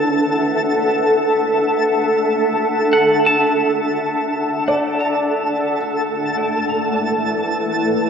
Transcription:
0.00 5.81 D4 medium
0.00 0.37 E4 medium
0.00 5.80 A4 medium
0.00 8.10 A4 medium
0.00 0.37 B4 medium
0.00 0.37 C#5 medium
0.00 8.10 E5 medium
0.00 8.10 F#5 medium
0.00 5.79 A5 medium
2.93 6.33 F#5 soft
3.26 6.64 A5 soft
4.68 5.86 D5 medium
5.80 8.10 A3 medium
5.80 8.10 A4 medium
5.80 6.97 E5 medium
5.80 8.10 A5 medium
6.66 8.10 E4 medium
6.79 8.10 B4 medium
6.93 8.10 D5 medium
8.06 8.10 C#5 medium

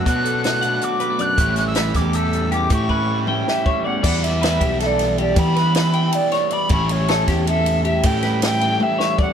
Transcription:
0.00 0.62 D3 medium
0.00 0.24 F#4 medium
0.05 0.62 B2 medium
0.05 1.37 B2 medium
0.05 0.78 B2 medium
0.05 1.38 F#3 medium
0.05 1.38 B3 medium
0.05 0.81 F#4 medium
0.05 0.41 F#6 medium
0.05 kick loud
0.05 closed hi-hat medium
0.09 1.39 D4 medium
0.24 0.63 D4 medium
0.24 0.62 A4 medium
0.24 closed hi-hat medium
0.44 1.01 A3 medium
0.44 0.85 F#6 loud
0.44 snare loud
0.44 closed hi-hat medium
0.61 1.38 D3 medium
0.61 1.19 D4 medium
0.61 1.00 F#5 medium
0.61 closed hi-hat medium
0.82 1.36 F#4 medium
0.82 1.22 D6 loud
0.82 closed hi-hat medium
1.00 1.10 G3 medium
1.00 1.19 B4 medium
1.00 closed hi-hat medium
1.10 1.38 A3 soft
1.19 1.35 F#2 medium
1.19 1.36 D4 medium
1.19 1.38 D5 medium
1.19 1.25 G6 loud
1.19 closed hi-hat medium
1.24 1.57 F#6 loud
1.37 1.91 A1 medium
1.37 2.68 A2 medium
1.37 2.51 A2 medium
1.37 2.70 E3 medium
1.37 2.71 G3 medium
1.37 2.71 C#4 medium
1.37 2.73 E4 loud
1.37 2.14 G4 medium
1.37 1.76 C#5 medium
1.37 kick loud
1.37 closed hi-hat loud
1.56 1.95 C#4 medium
1.56 1.66 F#6 medium
1.56 snare soft
1.56 closed hi-hat medium
1.67 1.97 E6 medium
1.75 2.34 G3 medium
1.75 1.95 B4 medium
1.75 snare loud
1.75 closed hi-hat loud
1.94 2.67 E2 medium
1.94 3.28 E3 medium
1.94 2.52 C#4 medium
1.94 2.14 G4 medium
1.94 2.16 D6 medium
1.94 kick medium
1.94 snare soft
1.94 closed hi-hat medium
2.13 2.72 G4 medium
2.13 2.51 A4 medium
2.13 2.52 E6 loud
2.13 closed hi-hat medium
2.33 3.09 G3 medium
2.33 closed hi-hat medium
2.52 2.69 E2 medium
2.52 2.69 C#4 soft
2.52 2.90 G4 medium
2.52 2.70 D6 medium
2.52 closed hi-hat medium
2.69 4.02 A2 medium
2.69 3.43 A2 medium
2.69 3.85 A2 medium
2.69 4.01 E3 medium
2.69 4.03 G3 medium
2.69 4.03 C#4 medium
2.69 4.04 E4 loud
2.69 3.48 G4 medium
2.69 kick loud
2.69 closed hi-hat medium
2.73 3.19 C#6 medium
2.89 3.27 C#4 medium
2.89 3.28 B4 medium
2.89 kick medium
3.10 3.67 G3 medium
3.27 4.02 E3 medium
3.27 3.85 C#4 medium
3.27 3.66 G5 medium
3.27 mid tom medium
3.48 4.03 G4 medium
3.48 3.88 E5 medium
3.48 snare medium
3.66 5.39 G3 medium
3.66 3.84 C#5 medium
3.66 kick medium
3.84 4.02 E2 medium
3.84 4.03 C#4 medium
3.84 4.02 D5 medium
3.84 4.04 F#5 medium
4.03 4.57 E2 loud
4.03 5.34 E3 medium
4.03 5.35 G3 medium
4.03 5.35 B3 medium
4.03 5.37 E4 loud
4.03 4.41 D5 medium
4.03 4.25 F#5 loud
4.03 kick loud
4.03 crash loud
4.23 4.80 E5 loud
4.23 snare soft
4.23 ride medium
4.41 4.61 B4 medium
4.41 snare loud
4.41 ride loud
4.60 5.33 B1 medium
4.60 4.80 G4 medium
4.60 kick medium
4.60 ride medium
4.80 5.18 A4 medium
4.80 4.87 E5 medium
4.80 snare soft
4.80 ride loud
4.86 5.16 D5 medium
4.99 snare soft
4.99 ride medium
5.18 5.56 G4 medium
5.18 5.40 D5 medium
5.18 ride medium
5.34 6.70 E3 medium
5.34 6.09 E3 medium
5.34 6.71 G3 medium
5.34 6.69 B3 loud
5.34 6.73 E4 loud
5.34 kick loud
5.34 ride medium
5.38 5.76 B5 medium
5.56 5.94 B4 medium
5.56 snare soft
5.56 ride medium
5.75 6.15 B5 medium
5.75 snare loud
5.75 ride loud
5.93 6.32 G5 medium
5.93 ride medium
6.12 6.54 D5 loud
6.12 ride loud
6.32 6.51 C#5 medium
6.32 snare soft
6.32 ride medium
6.51 6.71 D5 medium
6.51 6.71 B5 loud
6.51 ride medium
6.69 7.24 A1 loud
6.69 8.02 A2 medium
6.69 8.03 E3 medium
6.69 8.03 G3 loud
6.69 8.04 C#4 loud
6.69 7.09 C#5 medium
6.69 6.92 B5 loud
6.69 kick loud
6.69 ride loud
6.73 8.04 E4 loud
6.89 7.47 C#5 loud
6.89 ride medium
7.08 7.28 A4 medium
7.08 snare loud
7.08 ride loud
7.27 8.00 E2 loud
7.27 7.47 G4 medium
7.27 kick medium
7.27 snare soft
7.27 ride medium
7.47 7.84 A4 medium
7.47 7.83 E5 loud
7.47 ride loud
7.66 ride medium
7.85 8.22 G4 medium
7.85 8.07 E5 loud
7.85 ride medium
8.03 9.33 A2 medium
8.03 8.76 A2 medium
8.03 9.33 E3 loud
8.03 9.33 G3 loud
8.03 9.33 C#4 medium
8.03 9.33 E4 loud
8.03 8.43 G5 loud
8.03 kick loud
8.03 ride loud
8.23 8.61 B4 medium
8.23 snare soft
8.23 ride medium
8.42 8.84 G5 loud
8.42 snare loud
8.42 ride loud
8.61 8.98 G5 medium
8.61 ride medium
8.80 9.19 E5 loud
8.80 high tom medium
8.99 9.18 C#5 medium
8.99 snare medium
9.18 9.33 D5 medium
9.18 9.33 F#5 loud
9.18 kick loud

